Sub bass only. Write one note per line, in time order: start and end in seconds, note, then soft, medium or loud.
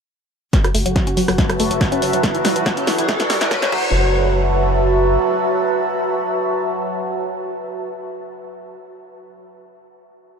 0.75 0.85 F#1 loud
0.86 0.96 F#1 medium
1.07 1.17 F#1 medium
1.28 1.38 F#1 medium
1.60 1.70 F#1 loud
1.71 1.81 F#1 medium
2.02 2.13 F#1 loud
2.13 2.23 F#1 medium
2.45 2.55 E1 loud
2.56 2.66 E1 medium
2.77 2.87 E1 medium
2.98 3.08 E1 medium
3.30 3.40 E1 loud
3.41 3.51 E1 medium
3.72 5.17 F#1 loud